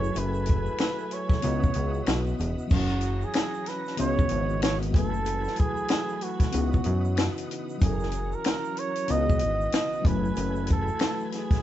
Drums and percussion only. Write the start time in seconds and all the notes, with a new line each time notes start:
0.04 shaker
0.15 closed hi-hat, shaker
0.34 shaker
0.46 kick, closed hi-hat, shaker
0.66 shaker
0.78 finger snap, snare, closed hi-hat, shaker
0.99 shaker
1.11 closed hi-hat, shaker
1.29 kick, snare, shaker
1.42 closed hi-hat, shaker
1.63 kick, shaker
1.74 closed hi-hat, shaker
1.94 shaker
2.06 finger snap, snare, closed hi-hat, shaker
2.26 shaker
2.39 closed hi-hat, shaker
2.59 shaker
2.70 kick, crash, shaker
2.89 shaker
3.01 closed hi-hat, shaker
3.22 shaker
3.33 finger snap, snare, closed hi-hat, shaker
3.54 shaker
3.66 snare, closed hi-hat, shaker
3.86 snare, shaker
3.97 closed hi-hat, shaker
4.18 kick, shaker
4.29 closed hi-hat
4.50 shaker
4.62 finger snap, snare, closed hi-hat, shaker
4.82 closed hi-hat, shaker
4.94 kick, closed hi-hat
5.14 shaker
5.25 closed hi-hat, shaker
5.44 snare, shaker
5.56 kick, closed hi-hat, shaker
5.77 shaker
5.88 finger snap, snare, closed hi-hat, shaker
6.09 shaker
6.21 closed hi-hat, shaker
6.40 kick, snare, closed hi-hat, shaker
6.52 closed hi-hat, shaker
6.73 kick, shaker
6.84 closed hi-hat
7.05 shaker
7.17 finger snap, snare, closed hi-hat, shaker
7.37 closed hi-hat, shaker
7.51 closed hi-hat
7.69 shaker
7.81 kick, closed hi-hat, shaker
8.00 snare, shaker
8.11 closed hi-hat, shaker
8.32 shaker
8.44 finger snap, snare, closed hi-hat, shaker
8.64 shaker
8.77 closed hi-hat, shaker
8.95 closed hi-hat, shaker
9.08 closed hi-hat, shaker
9.30 kick, shaker
9.39 closed hi-hat
9.61 shaker
9.72 finger snap, snare, closed hi-hat, shaker
9.93 shaker
10.05 kick, closed hi-hat
10.25 shaker
10.36 closed hi-hat, shaker
10.56 shaker
10.67 kick, closed hi-hat, shaker
10.88 shaker
10.99 finger snap, snare, closed hi-hat, shaker
11.20 shaker
11.32 snare, closed hi-hat, shaker
11.51 kick, snare, closed hi-hat, shaker